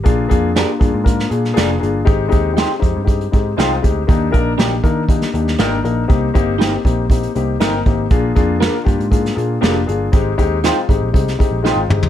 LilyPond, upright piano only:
\new Staff \with { instrumentName = "Upright piano" } { \time 4/4 \key bes \mixolydian \tempo 4 = 119 <bes d' f' g' aes'>8 <bes d' f' aes'>8 <bes d' f' g'>8 <bes d' f' aes'>8 <bes d' f' bes'>8 <bes d' f' aes'>8 <bes d' f' aes'>8 <bes d' f' aes'>8 | <aes c' ees' g'>8 <aes c' ees' g'>8 <aes c' ees' g'>8 <aes c' ees' g'>8 <aes c' ees' g'>8 <aes c' ees' g'>8 <aes c' ees' f'>8 <aes c' ees' g'>8 | <bes d' ees' g'>8 <bes d' ees' bes'>8 <bes d' ees' g'>8 <bes d' ees' bes'>8 <bes d' ees' g'>8 <bes d' ees' g'>8 <bes d' ees' bes'>8 <bes d' ees' bes'>8 | <bes c' ees' g'>8 <bes c' ees' g'>8 <bes c' ees' g'>8 <bes c' ees' g'>8 <bes c' ees' g'>8 <bes c' ees' g'>8 <bes c' ees' bes'>8 <bes c' ees' g'>8 |
<bes d' f' aes'>8 <bes d' f' aes'>8 <bes d' f' bes'>8 <bes d' f' g'>8 <bes d' f' aes'>8 <bes d' f' aes'>8 <bes d' f' g'>8 <bes d' f' aes'>8 | <aes c' ees' g'>8 <aes c' ees' g'>8 <aes c' ees' f'>8 <aes c' ees' g'>8 <aes c' ees' g'>8 <aes c' ees' g'>8 <aes c' ees' f'>8 <aes c' ees' g'>8 | }